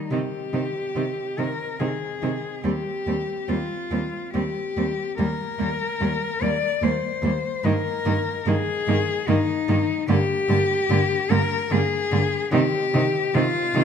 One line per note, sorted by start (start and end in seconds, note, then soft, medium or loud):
0.00 0.13 D#4 soft
0.11 0.19 C3 soft
0.11 0.20 D#3 soft
0.11 0.20 C4 soft
0.11 1.40 G4 medium
0.53 0.62 C3 soft
0.53 0.61 D#3 soft
0.53 0.61 C4 soft
0.95 1.05 C3 soft
0.95 1.04 D#3 soft
0.95 1.03 C4 soft
1.38 1.46 C3 soft
1.38 1.46 D#3 soft
1.38 1.46 C4 soft
1.38 1.81 A#4 medium
1.79 1.88 C3 soft
1.79 1.88 D#3 soft
1.79 1.87 C4 soft
1.79 2.66 G#4 medium
2.22 2.31 C3 soft
2.22 2.30 D#3 soft
2.22 2.30 C4 soft
2.64 2.72 D#2 medium
2.64 2.72 G3 medium
2.64 2.72 C4 soft
2.64 3.50 G4 medium
3.07 3.15 D#2 soft
3.07 3.15 G3 soft
3.07 3.15 C4 soft
3.48 3.57 D#2 medium
3.48 3.57 G3 soft
3.48 3.56 C4 soft
3.48 4.34 F4 medium
3.91 4.00 D#2 soft
3.91 4.00 G3 soft
3.91 3.99 C4 soft
4.34 4.42 D#2 medium
4.34 4.42 G3 soft
4.34 4.42 C4 soft
4.34 5.17 G4 medium
4.77 4.85 D#2 medium
4.77 4.85 G3 soft
4.77 4.85 C4 soft
5.18 5.27 D#2 medium
5.18 5.27 G3 medium
5.18 5.26 A#3 medium
5.18 6.44 A#4 medium
5.59 5.69 D#2 soft
5.59 5.68 G3 soft
5.59 5.67 A#3 soft
6.01 6.09 D#2 medium
6.01 6.09 G3 medium
6.01 6.09 A#3 soft
6.41 6.49 D#2 medium
6.41 6.50 G3 medium
6.41 6.50 A#3 medium
6.41 6.85 D5 medium
6.82 6.90 D#2 medium
6.82 6.90 G3 soft
6.82 6.91 A#3 medium
6.82 7.66 C5 medium
7.22 7.30 D#2 medium
7.22 7.31 G3 medium
7.22 7.32 A#3 soft
7.64 7.72 G2 medium
7.64 7.73 D#3 medium
7.64 7.73 A#3 medium
7.64 8.49 A#4 medium
8.06 8.14 G2 medium
8.06 8.14 D#3 medium
8.06 8.14 A#3 medium
8.46 8.54 G2 medium
8.46 8.55 D#3 medium
8.46 8.54 A#3 medium
8.46 9.31 G#4 medium
8.87 8.95 G2 medium
8.87 8.96 D#3 medium
8.87 8.96 A#3 medium
9.27 9.36 G2 medium
9.27 9.37 D#3 medium
9.27 9.35 A#3 medium
9.27 10.09 D#4 medium
9.69 9.77 G2 medium
9.69 9.77 D#3 medium
9.69 9.77 A#3 medium
10.08 10.16 G2 medium
10.08 10.17 D3 medium
10.08 10.17 A#3 medium
10.08 11.32 G4 loud
10.49 10.57 G2 medium
10.49 10.57 D3 medium
10.49 10.59 A#3 medium
10.90 10.98 G2 medium
10.90 10.98 D3 medium
10.90 10.99 A#3 medium
11.30 11.38 G2 medium
11.30 11.38 D3 medium
11.30 11.38 A#3 medium
11.30 11.73 A#4 loud
11.70 11.78 G2 medium
11.70 11.79 D3 medium
11.70 11.80 A#3 medium
11.70 12.52 G#4 medium
12.12 12.20 G2 medium
12.12 12.20 D3 medium
12.12 12.21 A#3 medium
12.52 12.60 C3 medium
12.52 12.60 D#3 medium
12.52 12.61 C4 medium
12.52 13.36 G4 loud
12.94 13.02 C3 medium
12.94 13.02 D#3 medium
12.94 13.02 C4 medium
13.34 13.42 C3 medium
13.34 13.42 D#3 medium
13.34 13.43 C4 medium
13.34 13.84 F4 loud
13.74 13.82 C3 medium
13.74 13.83 D#3 medium
13.74 13.84 C4 medium